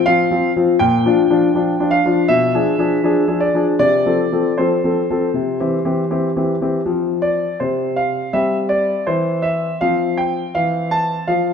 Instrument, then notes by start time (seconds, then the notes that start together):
grand piano
0.06 F3 C4 F4 F5
0.31 F3 C4 F4
0.56 F3 C4 F4
0.79 A#2 G5
1.05 F3 D4 F4
1.30 F3 D4 F4
1.55 F3 D4 F4
1.80 F3 D4 F4
1.91 F5
2.06 F3 D4 F4
2.28 B2 E5
2.54 F3 D4 G#4
2.79 F3 D4 G#4
3.03 F3 D4 G#4
3.28 F3 D4 G#4
3.40 D5
3.54 F3 D4 G#4
3.79 C3 D5
4.06 F3 C4 A4
4.32 F3 C4 A4
4.58 F3 C4 A4 C5
4.84 F3 C4 A4
5.10 F3 C4 A4
5.34 C3
5.60 E3 C4 G4
5.85 E3 C4 G4
6.10 E3 C4 G4
6.36 E3 C4 G4
6.61 E3 C4 G4
6.85 F3 C4
7.22 D5
7.60 C3 C5
7.96 F5
8.33 G3 C4 E5
8.69 D5
9.07 E3 C5
9.42 E5
9.81 F3 C4 F5
10.17 G5
10.55 E3 F5
10.91 A5
11.28 F3 F5